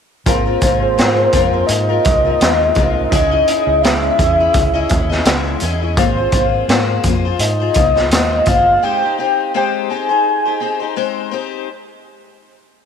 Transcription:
0.26 G#1 G#3 A#3 C4 F4 G#4 A#4 C5, kick, closed hi-hat
0.46 C4 F4 A#4
0.61 G#1 G#3 C4 F4 A#4, kick, closed hi-hat
0.81 A#3 F4 G#4 C5
0.98 G#2 G#3 C4 F4 A#4, snare, closed hi-hat
1.15 A#3 F4 G#4 C5
1.33 F2 G#3 C4 F4 A#4, kick, closed hi-hat
1.53 C4 F4 A#4
1.67 G#2 D#5, closed hi-hat
1.89 C4 F4 A#4
2.04 C2 G#3 C4 F4 A#4, kick, closed hi-hat
2.25 C4 F4 A#4
2.41 D#2 G#3 C4 F4 A#4, snare, closed hi-hat
2.75 C2 G#3 C4 F4, kick, closed hi-hat
2.79 A#4
3.10 C#2 C#3 G#3 C#4 E4 G#4 D#5, kick, closed hi-hat
3.31 C#4 E4 G#4 D#5
3.48 C#4 E4 G#4 D#5, closed hi-hat
3.66 C#2 C#4 E4 G#4 D#5
3.82 C#3 G#3 C#4 E4 G#4 E5, snare, closed hi-hat
4.02 C#4 E4 G#4 D#5
4.11 E5
4.18 E2 C#4 E4 G#4 D#5, kick, closed hi-hat
4.40 C#4 E4 G#4
4.54 C#2, kick, closed hi-hat
4.74 C#4 E4 G#4 D#5
4.89 D#2 C#4 E4 G#4 D#5, kick, closed hi-hat
5.10 C#4 E4 G#4 D#5, snare
5.25 C#2 C#3 G#3 C#4 E4 G#4, snare, closed hi-hat
5.60 E2 C#4 E4 G#4 D#5, closed hi-hat
5.81 C#4 E4 G#4 D#5
5.97 G#1 G#3 A#3 F4 G#4 C5, kick, closed hi-hat
6.17 F4 G#4 C5
6.32 G#1 A#3 F4 G#4 C5, kick, closed hi-hat
6.68 G#2 G#3 A#3 F4 G#4 C5, snare, closed hi-hat
7.03 F2 A#3 F4 G#4 C5, kick, closed hi-hat
7.25 F4 G#4 C5
7.39 G#2 D#5, closed hi-hat
7.60 F4 G#4 C5
7.74 C2 A#3 F4 G#4 C5, kick, closed hi-hat
7.95 F4 G#4 C5, snare
8.11 D#2 G#3 A#3 F4 G#4 C5, snare, closed hi-hat
8.46 G1 A#3 F4 G#4 C5 F5, kick, closed hi-hat
8.83 G#3 C4 D#4 G4 C5 G5
9.02 D#4 G4 C5
9.18 C4 D#4 G4 C5 G5
9.54 G#3 C4 D#4 G4 C5 G5
9.90 C4 D#4 G4 C5 G#5
10.09 D#4 C5
10.45 D#4 G4 C5
10.60 C4 D#4 G4 C5
10.80 D#4 G4 C5
10.96 G#3 C4 D#4 C5
11.31 C4 D#4 G4 C5

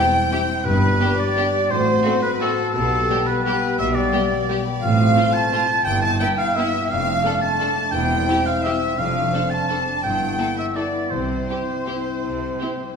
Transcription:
Already playing: E3 G3 C4 E4 G4 C5 G5
0.13 G3
0.32 C4 E4 G4
0.49 C5
0.65 G1 G2 D4 G4 B4
0.83 G3
1.00 B3 D4 G4 D5
1.18 G3 D5
1.36 B3 D4 G4
1.54 D5
1.70 A1 A2 C4 F#4 C5
1.88 C4
2.04 A3 C4 F#4 C5
2.23 C4 B4
2.41 A3 C4 F#4 A4
2.58 C5
2.74 B1 B2 B3 G4 A4
2.91 G3
3.09 G3 B3 G4 B4
3.27 G3 B4
3.44 G3 B3 G4 B4
3.63 B4
3.78 B1 B2 E5
3.95 G3 D5
4.12 G3 B3 G4 B4
4.31 G3
4.49 G3 B3 G4
4.65 B4
4.81 A1 A2 C4 F4 F5
4.99 A3
5.16 A3 C4 F4
5.34 A3 A5
5.52 A3 C4 F4
5.69 C5
5.85 G1 G2 B3 E4 G5
6.02 B3 A5
6.20 B3 E4 G5
6.38 B3 F5
6.56 B3 E4 E5
6.74 G4
6.89 F1 F2 A3 D4 F5
7.07 A3
7.24 A3 D4 A4
7.41 A3 A5
7.60 A3 D4 A4
7.77 A4
7.92 E1 E2 C4 E4 G5
8.10 G3
8.28 C4 E4 G4 C5
8.46 G3 F5
8.64 C4 E4 G4 E5
8.81 C5
8.97 F1 F2 C4 D4 F5
9.15 A3
9.32 C4 D4 A4 C5
9.50 A3 A5
9.69 C4 D4 A4
9.86 C5
10.02 G1 G2 B3 E4 G5
10.20 A3
10.38 B3 E4 A4 B4
10.57 A3 E5
10.75 B3 E4 A4 D5
10.94 B4
11.10 C2 C3 C4 E4 C5
11.30 G3
11.49 C4 E4 G4 C5
11.68 G3
11.87 C4 E4 G4
12.06 C5
12.24 C2 C3
12.42 G3
12.61 C4 E4 G4 C5
12.81 G3

